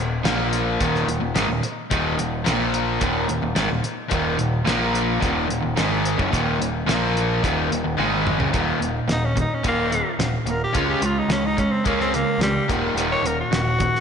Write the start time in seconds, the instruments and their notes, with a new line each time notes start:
Already playing: picked electric bass D#1, overdriven electric guitar D#2 A#2
0.25 picked electric bass A#1, overdriven electric guitar A#2 F3 A#3, snare, closed hi-hat
0.53 closed hi-hat
0.80 picked electric bass D#1, overdriven electric guitar D#2 A#2 D#3, kick, closed hi-hat
0.95 snare
1.07 picked electric bass D#1, overdriven electric guitar D#2 A#2, closed hi-hat
1.20 picked electric bass D#1, overdriven electric guitar D#2 A#2
1.34 picked electric bass G#1, overdriven electric guitar G#2 D#3, snare, closed hi-hat
1.48 picked electric bass D#1, overdriven electric guitar D#2 A#2
1.63 muted overdriven electric guitar stroke, muted picked electric bass stroke, closed hi-hat
1.90 picked electric bass D#1, overdriven electric guitar D#2 A#2 D#3, kick, closed hi-hat
2.16 picked electric bass D#1, overdriven electric guitar D#2 A#2, closed hi-hat
2.45 picked electric bass A#1, overdriven electric guitar A#2 F3 A#3, snare, closed hi-hat
2.74 closed hi-hat
3.00 picked electric bass D#1, overdriven electric guitar D#2 A#2 D#3, kick, closed hi-hat
3.28 picked electric bass D#1, overdriven electric guitar D#2 A#2, closed hi-hat
3.42 picked electric bass D#1, overdriven electric guitar D#2 A#2
3.55 picked electric bass G#1, overdriven electric guitar G#2 D#3, snare, closed hi-hat
3.70 picked electric bass D#1, overdriven electric guitar D#2 A#2
3.84 muted overdriven electric guitar stroke, muted picked electric bass stroke, closed hi-hat
4.08 picked electric bass D#1, overdriven electric guitar D#2 A#2 D#3, kick, closed hi-hat
4.37 picked electric bass D#1, overdriven electric guitar D#2 A#2, closed hi-hat
4.65 picked electric bass A#1, overdriven electric guitar A#2 F3 A#3, snare, closed hi-hat
4.95 closed hi-hat
5.19 picked electric bass D#1, overdriven electric guitar D#2 A#2 D#3, kick, closed hi-hat
5.48 picked electric bass D#1, overdriven electric guitar D#2 A#2, closed hi-hat
5.62 picked electric bass D#1, overdriven electric guitar D#2 A#2
5.76 picked electric bass G#1, overdriven electric guitar G#2 D#3 G#3, snare, closed hi-hat
6.05 closed hi-hat
6.18 picked electric bass F#1, overdriven electric guitar F#2 C#3, kick
6.31 picked electric bass D#1, overdriven electric guitar D#2 A#2 D#3, kick, closed hi-hat
6.59 picked electric bass D#1, overdriven electric guitar D#2 A#2, closed hi-hat
6.86 picked electric bass A#1, overdriven electric guitar A#2 F3 A#3, snare, closed hi-hat
7.17 closed hi-hat
7.42 picked electric bass D#1, overdriven electric guitar D#2 A#2 D#3, kick, closed hi-hat
7.69 picked electric bass D#1, overdriven electric guitar D#2 A#2, closed hi-hat
7.84 picked electric bass D#1, overdriven electric guitar D#2 A#2
7.97 picked electric bass G#1, overdriven electric guitar G#2 D#3 G#3, high tom
8.27 mid tom
8.38 picked electric bass F#1, overdriven electric guitar F#2 C#3, floor tom
8.52 picked electric bass D#1, overdriven electric guitar D#2 A#2 D#3, kick, closed hi-hat
8.80 picked electric bass D#1, overdriven electric guitar D#2 A#2, closed hi-hat
9.08 picked electric bass D#1, overdriven electric guitar D#2 A#2, tenor saxophone D#4, snare, closed hi-hat
9.25 tenor saxophone C#4
9.36 overdriven electric guitar D#2 A#2, kick, closed hi-hat
9.41 tenor saxophone D#4
9.54 tenor saxophone C#4
9.63 picked electric bass D#1, overdriven electric guitar D#2 A#2 D#3, kick, closed hi-hat
9.68 tenor saxophone A#3
9.91 overdriven electric guitar D#2 A#2, closed hi-hat
10.19 picked electric bass D#1, overdriven electric guitar D#2 A#2, snare, closed hi-hat
10.46 picked electric bass D#1, overdriven electric guitar D#2 A#2, closed hi-hat
10.50 tenor saxophone A#4
10.63 tenor saxophone G4
10.73 picked electric bass C#2, overdriven electric guitar C#3 G#3 C#4, tenor saxophone F4, kick, closed hi-hat
10.90 tenor saxophone G4
11.01 picked electric bass C#2, overdriven electric guitar C#3 G#3, closed hi-hat
11.05 tenor saxophone F4
11.18 tenor saxophone D#4
11.28 picked electric bass C#2, overdriven electric guitar C#3 G#3, tenor saxophone C#4, snare, closed hi-hat
11.46 tenor saxophone D#4
11.57 overdriven electric guitar C#3 G#3, tenor saxophone C#4, kick, closed hi-hat
11.72 tenor saxophone C4
11.84 picked electric bass C#2, overdriven electric guitar C#3 G#3 C#4, tenor saxophone A#3, kick, closed hi-hat
12.00 tenor saxophone C4, snare
12.13 overdriven electric guitar C#3 G#3, tenor saxophone A#3, snare, closed hi-hat
12.38 picked electric bass C#2, overdriven electric guitar C#3 G#3, snare, closed hi-hat
12.42 tenor saxophone G3
12.68 picked electric bass D#1, overdriven electric guitar D#2 A#2 D#3, kick, closed hi-hat
12.95 picked electric bass D#1, overdriven electric guitar D#2 A#2 D#3, closed hi-hat
13.12 tenor saxophone C#5
13.23 picked electric bass D#1, overdriven electric guitar D#2 A#2, tenor saxophone A#4, closed hi-hat
13.40 tenor saxophone F#4
13.51 picked electric bass D#1, overdriven electric guitar D#2 A#2, snare, closed hi-hat
13.79 overdriven electric guitar D#2 A#2, kick, closed hi-hat
13.95 snare